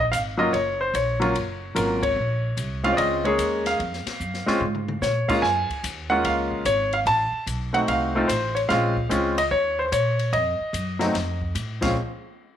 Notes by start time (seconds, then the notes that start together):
Already playing: A#1
0.12 G#1 F5, kick, hi-hat pedal, ride
0.37 F#3 A#3 C#4 F4 D#5
0.53 F#1 C#5, kick, ride
0.81 C5
0.94 A#1 C#5, kick, hi-hat pedal, ride
1.20 F#3 A#3 C#4 F4, ride
1.35 F#1, kick, ride
1.75 G#1 F#3 A#3 C#4 F4 A#4, kick, hi-hat pedal, ride
2.03 C#5, kick, ride
2.16 A#1
2.57 C2, kick, hi-hat pedal, ride
2.83 G#3 C4 C#4 F4 F5, ride
2.93 D5
2.97 C#2 D#5, kick, ride
3.24 G#3 A#3 C#4 G#4 C#5, ride
3.38 D#2, kick, hi-hat pedal, ride
3.66 F5, snare, ride
3.79 F2, kick, ride
3.93 snare
4.06 muted upright bass stroke, snare, ride
4.20 F#2, kick, hi-hat pedal
4.34 snare
4.46 G#3 C4 C#4 F4, muted upright bass stroke, snare
4.60 G#2, mid tom
4.75 mid tom
4.88 mid tom
5.01 A#2 C#5, snare, hi-hat pedal
5.28 G#3 A#3 C#4 F4 F5, muted upright bass stroke, kick, crash
5.42 F#2 G#5, kick, snare
5.70 muted upright bass stroke, kick, ride
5.83 D#2, hi-hat pedal, ride
6.10 G#3 A#3 C#4 F4 F#5
6.24 C#2 F5, kick, ride
6.52 kick
6.65 G#1 C#5, kick, hi-hat pedal, ride
6.93 F5, ride
7.06 A1 A5, kick, ride
7.32 muted upright bass stroke
7.47 B1, kick, hi-hat pedal, ride
7.73 A3 C4 D#4 F#4 F#5, ride
7.88 C2 F5, kick, ride
8.15 A3 C4 D#4 F4
8.28 A1 C5, kick, hi-hat pedal, ride
8.55 C#5, ride
8.69 A#1 G#3 C4 C#4 F4 F5, kick, snare, ride
8.97 kick
9.09 C#2 G#3 C4 C#4 F4, hi-hat pedal, ride
9.38 D#5, ride
9.51 D#2 C#5, kick
9.79 C5
9.86 C5
9.92 A#2 C#5, kick, hi-hat pedal, ride
10.19 ride
10.33 F2 D#5, kick, ride
10.60 muted upright bass stroke
10.73 F#2, kick, hi-hat pedal, ride
10.99 F#3 A3 C4 D#4, snare, ride
11.14 F2, kick, snare, ride
11.41 kick
11.55 A2, kick, hi-hat pedal, ride
11.81 A#1 F3 G#3 C4 C#4 F5, kick, snare, crash